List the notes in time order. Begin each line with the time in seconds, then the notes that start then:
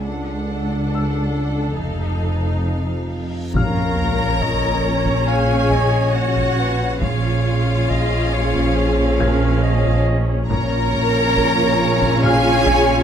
Already playing: C#2
0.06 D4 A4 F#5, reverse cymbal
0.95 E6
1.80 F1 F2 D#4 F5
3.52 A#1 A#2 C#3 C#4 A#4 C#5 F5 A#5, taiko, sub drop
3.56 F6
4.40 D#5, taiko
4.84 C#5
5.06 taiko
5.28 G#4 F5 G#5
5.71 D#5, taiko
6.14 F#4 C#5 F#5
6.36 taiko
6.59 B4
7.00 A#1 A#2 F3 C#4 F4 G#4 C#5 F5, taiko
7.89 D#5, taiko
8.34 C#5
8.54 taiko
8.76 G#4
9.19 A#4 G#6, taiko
9.62 D#5
9.85 taiko
10.49 A#1 A#2 C#3 C#4 F4 A#4 C#5 A#5 C#6 F6, taiko
10.94 taiko mid
11.36 taiko
11.58 taiko mid
12.02 taiko
12.23 G#4 C#5 F5 G#5 F6, taiko mid
12.67 C#5, taiko